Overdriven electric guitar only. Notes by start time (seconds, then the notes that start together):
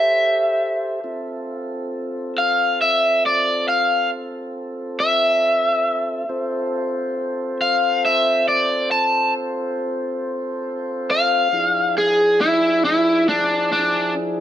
Already playing: E5
2.38 F5
2.81 E5
3.26 D5
3.68 F5
5.00 E5
7.61 F5
8.05 E5
8.48 D5
8.91 A5
11.11 F5
11.98 G#4
12.41 E4
12.85 E4
13.29 D4
13.72 D4